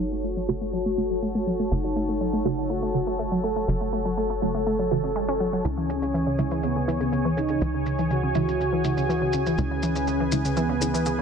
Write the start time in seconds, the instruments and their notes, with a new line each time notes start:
Already playing: analog synth bass F#1, synth stab C#3 A3, analog synth lead D#4, analog synth pad F#4 A4 C#5 A5
0.00 synth arpeggio sound F#3
0.12 synth arpeggio sound A3
0.24 synth arpeggio sound A3, analog synth lead F#4
0.37 synth arpeggio sound F#3
0.48 synth stab C#3 A3 F#4, synth arpeggio sound A3
0.61 synth arpeggio sound A3
0.73 synth arpeggio sound F#3
0.86 synth arpeggio sound A3
0.98 synth stab C#3 A3 F#4, synth arpeggio sound A3
1.10 synth arpeggio sound F#3
1.22 synth arpeggio sound A3
1.35 synth arpeggio sound A3
1.47 synth arpeggio sound F#3
1.60 synth arpeggio sound A3
1.71 analog synth bass F#1, synth stab C#3 A3 F#4, synth arpeggio sound A3, analog synth lead D#4
1.84 synth arpeggio sound F#3
1.96 synth arpeggio sound A3
2.09 synth arpeggio sound A3
2.21 synth arpeggio sound F#3
2.33 synth arpeggio sound A3
2.45 synth stab C#3 A3 F#4, synth arpeggio sound A3
2.58 synth arpeggio sound F#3
2.70 synth arpeggio sound A3, analog synth lead F#4
2.82 synth arpeggio sound A3
2.94 synth stab C#3 A3 F#4, synth arpeggio sound F#3
3.07 synth arpeggio sound A3
3.19 synth arpeggio sound A3
3.32 synth arpeggio sound F#3
3.44 synth arpeggio sound A3, analog synth lead A4
3.56 synth arpeggio sound A3
3.68 analog synth bass F#1, synth stab C#3 A3 F#4, synth arpeggio sound F#3
3.81 synth arpeggio sound A3
3.93 synth arpeggio sound A3
4.05 synth arpeggio sound F#3
4.17 synth arpeggio sound A3, analog synth lead A4
4.30 synth arpeggio sound A3
4.42 synth stab C#3 A3 F#4, synth arpeggio sound F#3
4.55 synth arpeggio sound A3
4.67 synth arpeggio sound A3
4.79 synth arpeggio sound F#3
4.91 synth stab C#3 A3 F#4, synth arpeggio sound E3
5.04 synth arpeggio sound C#4
5.16 synth arpeggio sound G#3
5.28 synth arpeggio sound C#4
5.40 synth arpeggio sound F#3
5.53 synth arpeggio sound F#3
5.65 analog synth bass C#2, synth stab C#3 G#3 E4, synth arpeggio sound C#3, analog synth pad E3 G#4 C#5 G#5, analog synth lead C#4, maracas
5.78 synth arpeggio sound E3
5.90 synth arpeggio sound C#3, maracas
6.02 synth arpeggio sound C#3, maracas
6.14 synth arpeggio sound E3, maracas
6.27 synth arpeggio sound C#3
6.39 synth stab C#3 G#3 E4, synth arpeggio sound C#3, maracas
6.51 synth arpeggio sound E3, maracas
6.63 synth arpeggio sound C#3, analog synth lead B3, maracas
6.76 synth arpeggio sound C#3
6.88 synth stab C#3 G#3 E4, synth arpeggio sound E3, maracas
7.00 synth arpeggio sound C#3, maracas
7.12 synth arpeggio sound C#3, maracas
7.25 synth arpeggio sound E3
7.37 synth arpeggio sound C#3, analog synth lead D#4, maracas
7.49 synth arpeggio sound C#3, maracas
7.62 analog synth bass C#2, synth stab C#3 E3 G#3, synth arpeggio sound E3, maracas
7.74 synth arpeggio sound C#3
7.86 synth arpeggio sound C#3, maracas
7.99 synth arpeggio sound E3, maracas
8.11 synth arpeggio sound C#3, analog synth lead F#4, maracas
8.23 synth arpeggio sound C#3
8.35 synth stab C#3 G#3 E4, synth arpeggio sound E3, maracas
8.48 synth arpeggio sound C#3, maracas
8.60 synth arpeggio sound C#3, maracas
8.73 synth arpeggio sound E3
8.84 synth arpeggio sound C#3, synth stab C#3 G#3 E4, maracas
8.97 synth arpeggio sound C#3, maracas
9.09 synth arpeggio sound E3, maracas
9.22 synth arpeggio sound C#3
9.33 synth arpeggio sound C#3, maracas
9.46 synth arpeggio sound E3, maracas
9.58 analog synth bass C#2, synth arpeggio sound C#3, synth stab C#3 G#3 E4, analog synth lead C#4, analog synth pad B4, maracas
9.71 synth arpeggio sound C#3
9.83 synth arpeggio sound E3, maracas
9.96 synth arpeggio sound C#3, maracas
10.07 synth arpeggio sound C#3, maracas
10.20 synth arpeggio sound E3
10.32 synth arpeggio sound C#3, synth stab C#3 G#3 E4, maracas
10.45 synth arpeggio sound C#3, maracas
10.57 synth arpeggio sound E3, analog synth lead B3, maracas
10.69 synth arpeggio sound C#3
10.81 synth arpeggio sound C#3, synth stab C#3 G#3 E4, maracas
10.94 synth arpeggio sound E3, maracas
11.06 synth arpeggio sound C#3, maracas
11.18 synth arpeggio sound C#3